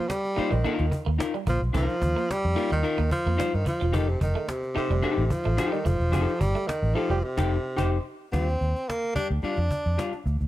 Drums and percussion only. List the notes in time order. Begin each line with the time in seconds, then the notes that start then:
0.10 cajon slap
0.24 cajon slap
0.37 cajon slap
0.51 cajon slap
0.64 cajon slap
0.78 cajon slap
0.92 cajon bass
1.06 cajon slap
1.20 cajon slap
1.34 cajon slap
1.47 cajon bass
1.63 cajon slap
1.75 cajon bass
1.89 cajon slap
2.02 cajon bass
2.17 cajon slap
2.31 cajon slap
2.45 cajon slap
2.57 cajon slap
2.71 cajon slap
2.84 cajon slap
2.98 cajon slap
3.11 cajon bass
3.26 cajon slap
3.40 cajon slap
3.53 cajon slap
3.66 cajon bass
3.81 cajon slap
3.94 cajon bass
4.21 cajon bass
4.35 cajon slap
4.49 cajon slap
4.63 cajon slap
4.76 cajon slap
4.90 cajon slap
5.03 cajon slap
5.17 cajon slap
5.30 cajon bass
5.44 cajon slap
5.58 cajon slap
5.73 cajon slap
5.86 cajon bass
6.00 cajon slap
6.13 cajon bass
6.29 cajon slap
6.41 cajon bass
6.56 cajon slap
6.69 cajon slap
6.83 cajon slap
6.96 cajon slap
7.10 cajon slap
7.38 cajon bass, cajon slap
7.78 cajon bass, cajon slap
8.33 cajon bass
8.49 cajon slap
8.61 cajon slap
8.76 cajon slap
8.90 cajon slap
9.04 cajon slap
9.16 cajon bass, cajon slap
9.30 cajon slap
9.43 cajon slap
9.56 cajon slap
9.71 cajon bass
9.85 cajon slap
9.99 cajon slap
10.13 cajon slap
10.26 cajon slap
10.40 cajon slap